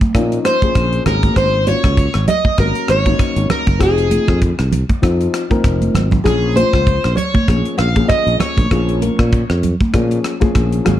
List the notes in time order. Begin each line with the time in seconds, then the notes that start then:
0.01 kick, closed hi-hat, high conga
0.15 A#2 F3 A#3 C#4 D#4, kick, cross-stick, closed hi-hat
0.32 closed hi-hat
0.45 C5, cross-stick, closed hi-hat
0.62 F3 A#3 C#4 G#4, muted fretless electric bass stroke, kick, closed hi-hat, high conga
0.75 A#1, kick, cross-stick, closed hi-hat
0.93 closed hi-hat
1.06 G#1 F#3 A#3 C#4 G#4 A#4, cross-stick, closed hi-hat, low conga
1.23 kick, closed hi-hat, high conga
1.36 G#1 C5, kick, cross-stick, closed hi-hat
1.67 F#3 A#3 C#4 F4 C#5, closed hi-hat, high conga
1.84 C#2, kick, cross-stick, closed hi-hat
1.97 kick, closed hi-hat
2.14 G#1 C#4 G#4, cross-stick, closed hi-hat
2.28 D#5, closed hi-hat, low conga
2.45 muted fretless electric bass stroke, kick, high conga
2.58 G#1 F#3 A#3 C#4 A#4, kick, cross-stick, closed hi-hat
2.75 closed hi-hat
2.88 G#1 C#5, cross-stick, closed hi-hat
3.05 F#3 A#3 C#4 D#4, kick, closed hi-hat, high conga
3.19 kick, cross-stick, closed hi-hat
3.36 G#1, closed hi-hat
3.50 A#4, cross-stick, closed hi-hat, low conga
3.67 F#1, kick, closed hi-hat, high conga
3.79 F1 F3 C4 D#4 G#4, kick, cross-stick, closed hi-hat
3.98 closed hi-hat
4.10 F3 C4 D#4 G#4, closed hi-hat, high conga
4.28 F2, kick, cross-stick, low conga
4.42 kick, closed hi-hat
4.58 C2 D#4 G#4, cross-stick, closed hi-hat
4.72 closed hi-hat, low conga
4.89 kick, closed hi-hat, high conga
5.02 F2 F3 C4 D#4 F4, kick, cross-stick, closed hi-hat, high conga
5.21 closed hi-hat
5.34 cross-stick, closed hi-hat
5.50 F3 C4 D#4 A#4, muted fretless electric bass stroke, kick, closed hi-hat, high conga
5.64 F1, kick, cross-stick, closed hi-hat
5.82 closed hi-hat, high conga
5.95 G#1, cross-stick, closed hi-hat, low conga
6.11 kick, closed hi-hat, low conga
6.24 A#1 F3 A#3 C#4 G#4, kick, cross-stick, closed hi-hat
6.56 F3 A#3 C#4 F4 C5, closed hi-hat, high conga
6.73 C#2, kick, cross-stick, closed hi-hat
6.87 kick, closed hi-hat
7.04 A#1 C#4 G#4, cross-stick, closed hi-hat
7.15 C#5, closed hi-hat, low conga
7.34 muted fretless electric bass stroke, kick, high conga
7.47 A#1 F3 A#3 C#4 G#4, kick, cross-stick, closed hi-hat
7.65 closed hi-hat
7.78 A#1 F5, cross-stick, closed hi-hat
7.95 F3 A#3 C#4 G#4, kick, closed hi-hat, high conga
8.08 D#5, kick, cross-stick, closed hi-hat
8.27 A#1, closed hi-hat
8.40 C#5, cross-stick, closed hi-hat, low conga
8.57 A#1, kick, closed hi-hat, high conga
8.71 A#1 F3 A#3 C#4 G#4, kick, cross-stick, closed hi-hat
8.89 closed hi-hat
9.01 F3 A#3 C#4 A#4, closed hi-hat, high conga
9.19 A#2, kick, cross-stick
9.33 kick, closed hi-hat
9.49 F2 C#4 G#4, cross-stick, closed hi-hat
9.63 closed hi-hat, low conga
9.80 kick, closed hi-hat, high conga
9.93 A#2 F3 A#3 C#4 G#4, kick, cross-stick, closed hi-hat
10.11 closed hi-hat
10.24 cross-stick, closed hi-hat
10.40 F3 A#3 C#4 G#4, muted fretless electric bass stroke, kick, closed hi-hat, high conga
10.55 A#1, kick, cross-stick, closed hi-hat
10.72 closed hi-hat
10.85 G#1 F#3 A#3 C#4 G#4, cross-stick, closed hi-hat, low conga